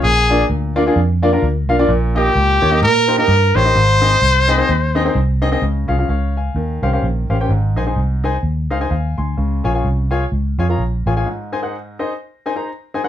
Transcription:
X:1
M:4/4
L:1/16
Q:"Swing" 1/4=128
K:Db
V:1 name="Trumpet"
A4 z12 | z2 =G6 B3 B3 c2- | c12 z4 | z16 |
z16 | z16 | z16 |]
V:2 name="Grand piano"
z2 [B,=DF=d] z3 [B,DFd] [B,DFA] z2 [B,DFd] [B,DFB] z2 [B,DFf] [B,DFd] | z2 [B,E=Ge] z3 [B,EGd] [B,EGe] z2 [B,EGc] [B,EGe] z2 [B,EGd] [B,EGe] | z2 [CEAe] z3 [CEAe] [CEAe] z2 [CEAe] [CEAc] z2 [CEAe] [CEAe] | z2 [DFAf] [DFAf] [df]2 [fa]4 [D=Gcf] [DGcf] z2 [DGcf] [DGc=g] |
z2 [EAca] [EAca] z2 [EAca] z3 [EAcf] [EAca] [fa]2 [ac']2- | [ac']2 [FAda] [FAda] z2 [FAda] z3 [FAda] [FAdb] z2 [FAda] [FAda] | z2 [EAca] [EAcg] z2 [EAce] z3 [EAca] [EAcb] z2 [EAca] [EAcg] |]
V:3 name="Grand piano" clef=bass
B,,6 z8 z2 | B,,6 z8 z2 | A,,6 z8 z2 | D,6 z2 E,6 z2 |
A,,6 z8 z2 | D,6 z8 z2 | A,,6 z8 z2 |]
V:4 name="Fingered electric bass" clef=bass
B,,,4 =D,,4 F,,4 D,,2 _C,,2 | B,,,4 D,,2 E,,2 B,,4 =G,,2 =A,,,2 | A,,,4 C,,4 E,,4 C,,4 | D,,2 C,,2 D,,4 E,,2 C,,2 B,,,2 =A,,,2 |
A,,,2 B,,,2 C,,4 E,,2 D,,2 E,,2 =D,,2 | D,,2 B,,,2 C,,4 D,,2 F,,2 B,,,2 =A,,,2 | z16 |]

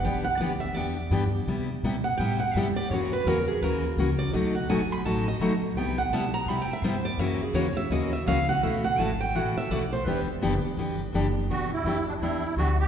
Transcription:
X:1
M:4/4
L:1/16
Q:"Swing" 1/4=168
K:Em
V:1 name="Steel-string acoustic guitar"
g2 f2 d2 e2 d8- | d4 z2 f2 g2 f2 e2 d2 | ^c2 B2 ^A2 ^G2 A6 d2 | ^d2 f2 ^g2 b2 a2 d2 z4 |
g2 f2 a2 ^a2 (3b2 g2 e2 c2 d2 | e2 ^G2 ^c2 e2 ^d2 e2 =f2 ^f2 | e2 f2 a2 g2 f2 e2 d2 c2 | B2 z12 z2 |
z16 |]
V:2 name="Accordion"
z16 | z16 | z16 | z16 |
z16 | z16 | z16 | z16 |
F2 E4 D2 E4 F2 G2 |]
V:3 name="Steel-string acoustic guitar"
[E,B,DG]2 z2 [E,B,DG] z3 [E,B,DG]2 z2 [E,B,DG] z3 | [C,G,B,EG]2 z2 [C,G,B,EG] z3 [C,G,B,EG]2 z2 [C,G,B,EG] z3 | [^C,E,^A,^CF]2 z2 [C,E,A,CF] z3 [C,E,A,CF]2 z2 [C,E,A,CF] z3 | [B,,F,A,^DF]2 z2 [B,,F,A,DF] z3 [B,,F,A,DF]2 z2 [B,,F,A,DF] z3 |
[C,G,B,EG]2 z2 [C,G,B,EG] z3 [C,G,B,EG]2 z2 [C,G,B,EG] z3 | [^C,E,^A,^CF]2 z2 [C,E,A,CF] z3 [C,E,A,CF]2 z2 [C,E,A,CF] z3 | [B,,E,A,EF]2 z2 [B,,E,A,EF] z3 [B,,E,A,EF]2 z2 [B,,E,A,EF] z3 | [E,B,DG]2 z2 [E,B,DG] z3 [E,B,DG]2 z2 [E,B,DG] z3 |
[E,B,DG]2 z2 [E,B,DG] z3 [E,B,DG]2 z2 [E,B,DG] z3 |]
V:4 name="Upright bass" clef=bass
B,,,4 D,,4 E,,4 G,,4 | C,4 B,,4 A,,4 G,,2 z2 | F,,4 E,,4 ^D,,4 ^C,,4 | B,,,4 G,,,4 A,,,4 B,,,2 z2 |
C,,4 B,,,4 B,,2 z2 G,,4 | F,,4 E,,4 ^D,,4 ^C,,4 | B,,,4 ^G,,,4 A,,,2 z2 B,,,4 | E,,,4 F,,,2 z2 G,,,4 F,,,4 |
B,,,4 F,,4 E,,4 D,,4 |]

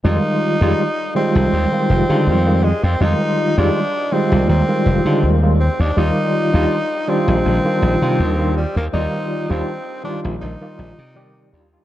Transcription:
X:1
M:4/4
L:1/16
Q:"Swing 16ths" 1/4=81
K:Fdor
V:1 name="Tenor saxophone"
E6 C8 A, C | E3 D3 C2 C4- C z C D | E6 C8 G, B, | E3 C3 D2 E6 z2 |]
V:2 name="Tine electric piano" clef=bass
[E,G,A,F]3 [E,G,A,F] z2 [E,G,A,F]3 [E,G,A,F]2 [E,G,A,F]2 [E,G,A,F] z2 | [E,G,A,F]3 [E,G,A,F] z2 [E,G,A,F]3 [E,G,A,F]2 [E,G,A,F]2 [E,G,A,F] z2 | [E,G,Fd]3 [E,G,DF] z2 [E,G,DF]3 [E,G,DF]2 [E,G,DF]2 [E,G,DF] z2 | [E,G,Fd]3 [E,G,DF] z2 [E,G,DF]3 [E,G,Fd]2 z [E,G,Gd]2 [E,G,DF] [E,G,DF] |]
V:3 name="Slap bass" clef=bass
F,, z2 F,, z3 C,, E,, z F,,, D, F,,2 z F,, | F,, z2 F,, z3 C,, E,, z F,,, D, E,,2 z E,, | E,, z2 E,, z3 B,,, B,,, z B,,, C, E,,2 z E,, | E,, z2 E,, z3 B,,, B,,, z B,,, C,3 E,, z |]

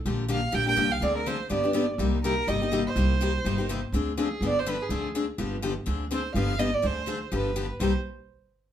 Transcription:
X:1
M:4/4
L:1/8
Q:"Swing" 1/4=248
K:Cm
V:1 name="Violin"
z2 f2 g g2 f | d B c2 d3 z | z2 B2 e2 z c- | c6- c z |
z2 A2 d c =B A- | A z6 z | z2 c2 f2 e d | c3 z =B3 z |
c z6 z |]
V:2 name="Steel-string acoustic guitar"
[D,F,B,DG] z [D,F,B,DG] z [D,F,B,DG] [B,DG] [D,F,B,DG] z | [D,F,CDA] z [D,F,CDA] z [D,F,=B,DG] [B,DG] [D,F,B,DG] z | [C,G,B,EG] z [C,G,B,EG] z [C,G,B,EG] [B,EG] [C,G,B,EG] z | [C,G,B,EG] z [C,G,B,EG] z [C,G,B,EG] [B,EG] [C,G,B,EG] z |
[D,F,CDA] z [D,F,CDA] z [D,F,=B,DG] z [D,F,B,DG] z | [D,F,CDA] z [D,F,CDA] z [D,F,=B,DG] z [D,F,B,DG] z | [D,F,CDA] z [D,F,CDA] z [D,F,=B,DG] z [D,F,B,DG] z | [D,F,CDA] z [D,F,CDA] z [D,F,=B,DG] z [D,F,B,DG] z |
[C,G,B,EG] z6 z |]
V:3 name="Upright bass" clef=bass
B,,,4 B,,,2 C,,2 | D,,4 G,,,4 | C,,4 G,,,4 | C,,4 G,,,4 |
D,,4 G,,,4 | D,,4 G,,,4 | D,,4 G,,,4 | D,,4 G,,,4 |
C,, z6 z |]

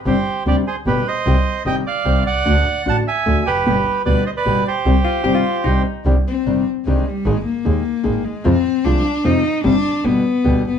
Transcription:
X:1
M:3/4
L:1/16
Q:1/4=150
K:Cm
V:1 name="Bandoneon"
[Gc]4 [Gd]2 [Ac]2 [G=B]2 [ce]2- | [ce]4 [eg]2 [df]4 [d^f]2- | [d^f]4 [f=a]2 [=e_a]4 [G=B]2- | [G=B]4 [Bd]2 [ce] [Bd]3 [Gc]2- |
[Gc]8- [Gc]2 z2 | z12 | z12 | z12 |
z12 |]
V:2 name="Hollow-body jazz guitar"
z12 | z12 | z12 | z12 |
z2 F2 G F3 E4 | z12 | z12 | z12 |
z12 |]
V:3 name="Cello"
z12 | z12 | z12 | z12 |
z12 | z2 C4 z2 A,2 G,2 | A,2 B,8 A,2 | C4 D4 E4 |
D4 =B,6 B,2 |]
V:4 name="Nylon-string guitar" clef=bass
[C,G,CDG]2 z2 [C,G,CDG]2 z2 [=B,,D,G,=B,G]2 z2 | [C,E,G,CG]2 z2 [C,E,G,CG]2 z2 [C,E,G,CG]2 z2 | [D,=A,D^F]2 z2 [D,A,DF]2 z2 [D,A,DF]2 z2 | [=B,,D,G,=B,G]2 z2 [B,,D,G,B,G]2 z2 [B,,D,G,B,G]2 z2 |
[C,E,G,CG]2 z2 [C,E,G,CG]2 z2 [C,E,G,CG]2 z2 | [C,E,G,DG]2 z2 [C,E,G,DG]2 z2 [C,E,G,DG]2 z2 | [E,A,EA]2 z2 [E,A,EA]2 z2 [E,A,EA]2 z2 | [C,F,A,CF]2 z2 [C,F,A,CF]2 z2 [C,F,A,CF]2 z2 |
[C,G,CDG]2 z2 [=B,,D,G,=B,G]2 z2 [B,,D,G,B,G]2 z2 |]
V:5 name="Double bass" clef=bass
G,,,2 z2 D,,2 z2 G,,,2 z2 | C,,2 z2 G,,,2 z2 C,,2 C,,2 | D,,2 z2 =A,,,2 z2 D,,2 F,,,2 | G,,,2 z2 D,,2 z2 G,,,2 z2 |
C,,2 z2 G,,,2 z2 C,,2 z2 | C,,2 z2 G,,,2 z2 C,,2 z2 | A,,,2 z2 E,,2 z2 A,,,2 z2 | F,,2 z2 C,,2 z2 F,,2 z2 |
G,,,2 z2 G,,,2 z2 D,,2 ^F,,,2 |]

